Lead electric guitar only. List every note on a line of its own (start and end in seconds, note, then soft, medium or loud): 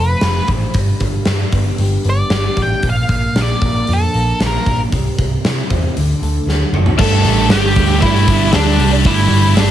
0.00 0.47 B4 medium
2.10 2.61 D5 medium
2.62 2.86 G5 medium
2.90 3.40 F5 medium
3.42 3.92 D5 medium
3.93 4.39 A4 medium
4.46 4.79 A#4 medium
6.99 7.48 A4 medium
6.99 7.47 A5 loud
7.51 7.99 G4 medium
7.51 7.99 G5 loud
8.01 8.50 E4 medium
8.01 8.55 E5 medium
8.55 8.90 D4 medium
8.55 8.90 D5 medium
9.07 9.54 E4 medium
9.07 9.59 E5 loud
9.59 9.71 D4 medium
9.59 9.71 D5 loud